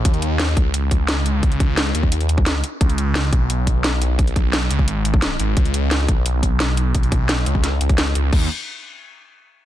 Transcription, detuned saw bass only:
X:1
M:4/4
L:1/8
Q:1/4=174
K:Dbmix
V:1 name="Detuned saw bass" clef=bass
E,,3 D,,4- D,,- | D,,3 E,, E,,3 z | D,,3 C,,4- C,,- | C,,3 D,, A,,,3 A,,, |
D,,3 C,,4- C,,- | C,,3 D,, D,, D,,2 D,, | E,, z6 z |]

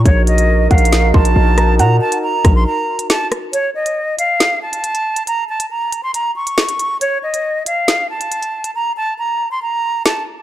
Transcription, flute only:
X:1
M:4/4
L:1/16
Q:1/4=138
K:Ebdor
V:1 name="Flute"
d2 e4 f4 =a6 | b2 =a2 b3 c' b4 a2 z2 | d2 e4 f4 =a6 | b2 =a2 b3 c' b2 d'6 |
d2 e4 f4 =a6 | b2 =a2 b3 c' b4 a2 z2 |]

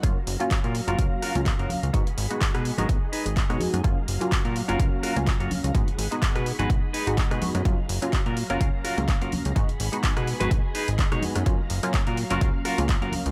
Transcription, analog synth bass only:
X:1
M:4/4
L:1/16
Q:"Swing 16ths" 1/4=126
K:F#
V:1 name="Analog synth bass" clef=bass
F,, z F,,, z2 A,, z F,,, C,, z2 C,, z F,,, C,, C,, | G,, G,,, G,,, z2 B,, z G,,, B,,, z2 G,,, z B,, F,, F,, | z2 F,,, z2 A,, z F,,, C,, z2 C,, z F,,, C,, C,, | G,, z G,,, z2 B,, z G,,, B,,, z2 G,,, z B,, F,, F,, |
F,, z F,,, z2 A,, z F,,, C,, z2 C,, z F,,, C,, C,, | G,, G,,, G,,, z2 B,, z G,,, B,,, z2 G,,, z B,, F,, F,, | F,, z F,,, z2 A,, z F,,, C,, z2 C,, z F,,, C,, C,, |]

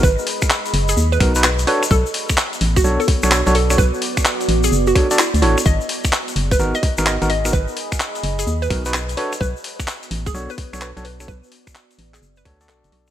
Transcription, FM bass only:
X:1
M:4/4
L:1/16
Q:"Swing 16ths" 1/4=128
K:Blyd
V:1 name="FM bass" clef=bass
G,,, z4 z F,,,2 D,,2 B,,,4 z2 | B,,, z4 z =A,,,2 B,,, z2 B,,,2 B,,,3 | B,,, z4 z =A,,,2 F,,,2 z3 =D,, A,,, z | G,,, z4 z F,,,2 G,,, z2 G,,,2 G,,,3 |
G,,, z4 z F,,,2 D,,2 B,,,4 z2 | B,,, z4 z =A,,,2 B,,, z2 B,,,2 B,,,3 | B,,, z4 z =A,,,2 F,,,2 =D,,2 B,,, F,,, B,,,2 |]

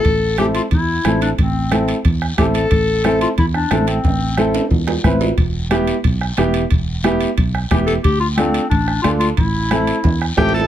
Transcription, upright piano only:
X:1
M:4/4
L:1/8
Q:1/4=180
K:Am
V:1 name="Upright piano"
z2 [CEA] z3 [CEA] z | z2 [CEA] z3 [CEA] z | z2 [CEA] z3 [CEA] z | z2 [CEA] z3 [CEB] z |
z2 [B,EG] z3 [B,EG] z | z2 [B,EG] z3 [B,EG] z | z2 [DFA] z3 [DFA] z | z2 [CEA] z3 [CEA] z |]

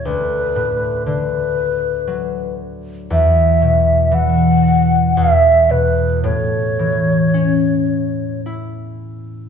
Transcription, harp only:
X:1
M:3/4
L:1/8
Q:1/4=58
K:A
V:1 name="Harp" clef=bass
D,, A,, D,2 F,2 | E,, B,, E,2 E,, B,, | A,, E, C2 E2 |]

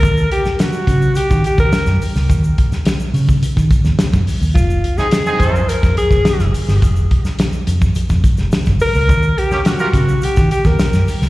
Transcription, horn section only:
X:1
M:4/4
L:1/16
Q:1/4=106
K:Fm
V:1 name="Horn section"
z16 | z16 | z3 [CEA] z [CEA]3 z8 | z16 |
z3 [B,DG] z [FGB] z8 z2 |]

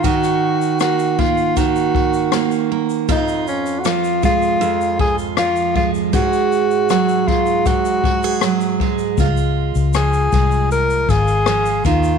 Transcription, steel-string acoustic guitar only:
X:1
M:4/4
L:1/16
Q:1/4=79
K:Db
V:1 name="Steel-string acoustic guitar" clef=bass
[E,G]4 B,2 B,2 E,2 G2 B,2 B,2 | [F,,F]4 F,2 A,2 F,,2 F2 F,2 A,2 | [A,,A]4 G,2 A,2 A,,2 G A G,2 A,2 | F4 F,2 A,4 F2 F,2 E,2 |]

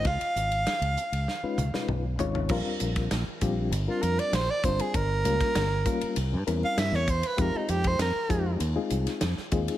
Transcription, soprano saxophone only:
X:1
M:4/4
L:1/16
Q:1/4=98
K:Bbmix
V:1 name="Soprano saxophone"
f12 z4 | z8 z F B d c d c A | B8 z3 f =e _d c =B | B E G c B4 z8 |]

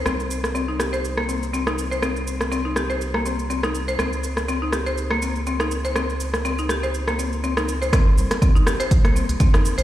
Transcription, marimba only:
X:1
M:4/4
L:1/16
Q:"Swing 16ths" 1/4=122
K:Bbdor
V:1 name="Marimba"
C z3 C E G c z B, C z C E z c | C z3 C E G c z B, C z C E z c | C z3 C E G c z B, C z C E z c | C z3 C E G c z B, C z C E z c |
C z3 C E G c z B, C z C E z c |]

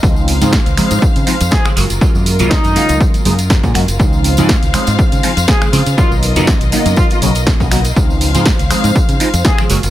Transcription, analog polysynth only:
X:1
M:4/4
L:1/16
Q:"Swing 16ths" 1/4=121
K:Db
V:1 name="Analog polysynth" clef=bass
[D,F,A,CE]3 [D,F,A,CE] z2 [D,F,A,CE]4 [D,F,A,CE] z2 [D,F,A,CA] [D,G,A,B,G] z | [D,G,A,B,F]3 [D,G,A,B,F] z2 [D,G,A,B,F]4 [D,G,A,B,E] z2 [D,G,A,B,A] [D,G,A,B,G] z | [D,F,A,CE]3 [D,F,A,CE] z2 [D,F,A,CE]4 [D,F,A,CE] z2 [D,F,A,CA] [D,F,A,CF] z | [D,G,B,_CE]3 [D,G,B,CE] z2 [D,G,B,CE]4 [D,G,B,CD] z2 [D,G,B,CA] [D,G,B,CG] z |
[D,F,A,CE]3 [D,F,A,CE] z2 [D,F,A,CE]4 [D,F,A,CE] z2 [D,F,A,CA] [D,G,A,B,G] z |]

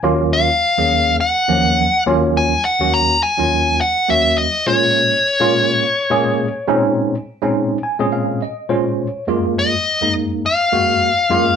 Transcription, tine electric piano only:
X:1
M:4/4
L:1/16
Q:"Swing 16ths" 1/4=104
K:Bbm
V:1 name="Tine electric piano"
z16 | z16 | z16 | z6 a2 f2 e2 d4 |
z16 |]
V:2 name="Tine electric piano"
[E,,G,B,DF]3 z2 [E,,G,B,DA]3 z2 [E,,F,G,B,D]2 z2 [E,,G,B,DF]2- | [E,,G,B,DF] z2 [E,,G,B,DG]2 z2 [E,,G,B,DF]3 z2 [E,,G,B,DG]2 z2 | [B,,A,B,DF]3 z2 [B,,A,B,DF]3 z2 [B,,A,B,DA]2 z2 [B,,A,CDE]2- | [B,,A,CDE] z2 [B,,A,CDE]2 z2 [B,,A,CDA]3 z2 [B,,A,DFc]2 z2 |
[G,,A,B,F]3 z2 [G,,A,B,E]3 z2 [G,,A,B,G]2 z2 [G,,A,B,F]2 |]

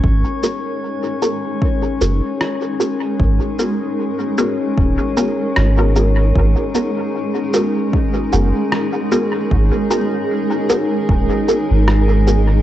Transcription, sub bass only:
X:1
M:4/4
L:1/16
Q:"Swing 16ths" 1/4=76
K:G#m
V:1 name="Sub bass" clef=bass
G,,, z8 z F,,, z4 z | G,,, z6 z D,,, z3 G,,,4 | G,,, z8 z F,,, z4 z | G,,, z6 z D,,, z2 G,,,4- G,,, |]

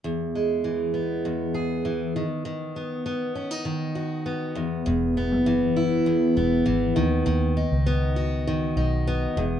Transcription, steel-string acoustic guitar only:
X:1
M:4/4
L:1/16
Q:1/4=100
K:E
V:1 name="Steel-string acoustic guitar" clef=bass
E,,2 G,2 E,2 B,2 E,,2 G2 E,2 D,2 | D,2 B,2 B,2 C D D,2 F2 B,2 E,,2 | E,,2 B,2 E,2 E2 E,,2 B,2 E,2 D,2 | D,2 D2 B,2 F2 D,2 D2 B,2 E,,2 |]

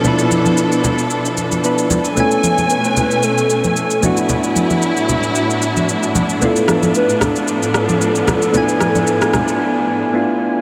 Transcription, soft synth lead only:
X:1
M:4/4
L:1/16
Q:"Swing 16ths" 1/4=113
K:Dlyd
V:1 name="Soft synth lead"
E12- E2 z2 | A4 B4 A3 A3 F E- | E12- E2 z2 | A4 B2 A8- A2- |
A12 z4 |]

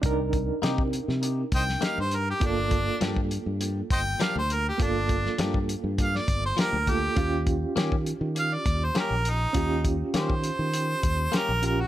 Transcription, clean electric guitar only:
X:1
M:4/4
L:1/8
Q:1/4=101
K:Gm
V:1 name="Clean electric guitar"
z2 [B,EG] z3 [B,EG] z | z2 [F,B,DG] z3 [F,B,DG] z | z2 [F,B,DG] z3 [F,B,DG] z | z2 [B,_DG] z3 [B,DG] z |
z2 [B,_DG] z3 [B,DG] z |]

